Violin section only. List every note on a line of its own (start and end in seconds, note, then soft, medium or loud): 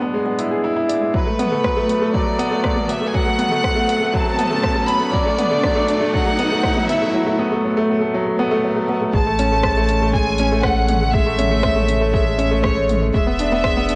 1.13 2.09 B4 medium
2.14 2.89 D5 medium
2.88 3.07 E5 medium
3.07 3.14 G#5 medium
3.14 4.14 F#5 loud
4.14 4.89 A5 loud
4.88 5.14 B5 loud
5.14 6.14 D5 loud
6.14 6.85 F#5 loud
6.89 7.14 E5 medium
9.14 10.10 A5 loud
10.14 10.64 G#5 loud
10.63 11.14 F#5 loud
11.13 12.13 E5 loud
12.14 12.60 E5 loud
12.64 13.02 C#5 medium
13.15 13.95 E5 loud